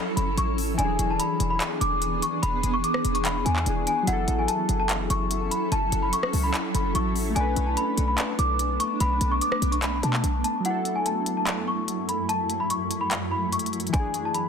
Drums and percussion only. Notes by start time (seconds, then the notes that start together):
0.17 closed hi-hat
0.38 closed hi-hat
0.58 open hi-hat
0.79 closed hi-hat
0.99 closed hi-hat
1.20 closed hi-hat
1.40 closed hi-hat
1.60 clap, closed hi-hat
1.81 closed hi-hat
2.02 closed hi-hat
2.22 closed hi-hat
2.43 closed hi-hat
2.63 closed hi-hat
2.84 closed hi-hat
2.94 cross-stick
3.05 closed hi-hat
3.15 closed hi-hat
3.25 clap, closed hi-hat
3.46 closed hi-hat
3.56 clap
3.66 closed hi-hat
3.87 closed hi-hat
4.07 closed hi-hat
4.28 closed hi-hat
4.48 closed hi-hat
4.69 closed hi-hat
4.89 clap, closed hi-hat
5.10 closed hi-hat
5.31 closed hi-hat
5.51 closed hi-hat
5.72 closed hi-hat
5.92 closed hi-hat
6.13 closed hi-hat
6.23 cross-stick
6.33 open hi-hat
6.54 clap, closed hi-hat
6.75 closed hi-hat
6.95 closed hi-hat
7.16 open hi-hat
7.36 closed hi-hat
7.56 closed hi-hat
7.77 closed hi-hat
7.98 closed hi-hat
8.18 clap, closed hi-hat
8.39 closed hi-hat
8.59 closed hi-hat
8.80 closed hi-hat
9.00 closed hi-hat
9.21 closed hi-hat
9.41 closed hi-hat
9.52 cross-stick
9.62 closed hi-hat
9.72 closed hi-hat
9.82 clap, closed hi-hat
10.03 closed hi-hat
10.13 clap
10.24 closed hi-hat
10.44 closed hi-hat
10.65 closed hi-hat
10.85 closed hi-hat
11.06 closed hi-hat
11.26 closed hi-hat
11.47 clap, closed hi-hat
11.88 closed hi-hat
12.09 closed hi-hat
12.29 closed hi-hat
12.50 closed hi-hat
12.70 closed hi-hat
12.91 closed hi-hat
13.11 clap, closed hi-hat
13.53 closed hi-hat
13.59 closed hi-hat
13.66 closed hi-hat
13.73 closed hi-hat
13.80 closed hi-hat
13.87 closed hi-hat
13.94 kick, closed hi-hat
14.14 closed hi-hat
14.35 closed hi-hat